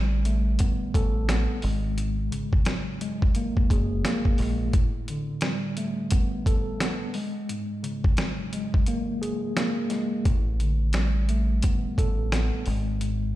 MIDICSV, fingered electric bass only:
0, 0, Header, 1, 3, 480
1, 0, Start_track
1, 0, Tempo, 689655
1, 1375, Time_signature, 4, 2, 24, 8
1, 9298, End_track
2, 0, Start_track
2, 0, Title_t, "Fingered electric bass"
2, 0, Program_c, 0, 33
2, 0, Note_on_c, 0, 33, 109
2, 389, Note_off_c, 0, 33, 0
2, 659, Note_on_c, 0, 33, 94
2, 1015, Note_off_c, 0, 33, 0
2, 1141, Note_on_c, 0, 32, 104
2, 1590, Note_off_c, 0, 32, 0
2, 2579, Note_on_c, 0, 30, 96
2, 2795, Note_off_c, 0, 30, 0
2, 3060, Note_on_c, 0, 34, 94
2, 3276, Note_off_c, 0, 34, 0
2, 7140, Note_on_c, 0, 33, 110
2, 8070, Note_off_c, 0, 33, 0
2, 8340, Note_on_c, 0, 33, 96
2, 8696, Note_off_c, 0, 33, 0
2, 8819, Note_on_c, 0, 32, 104
2, 9269, Note_off_c, 0, 32, 0
2, 9298, End_track
3, 0, Start_track
3, 0, Title_t, "Muted fingered electric bass strokes"
3, 567, Note_on_c, 9, 29, 50
3, 637, Note_off_c, 9, 29, 0
3, 8246, Note_on_c, 9, 29, 49
3, 8316, Note_off_c, 9, 29, 0
3, 9298, End_track
0, 0, End_of_file